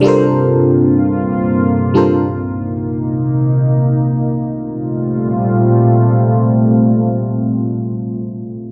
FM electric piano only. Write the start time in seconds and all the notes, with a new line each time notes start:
0.01 G3 D4 F4
0.05 A4 A#4 C5
1.94 G3 D4 F4 A4 A#4 C5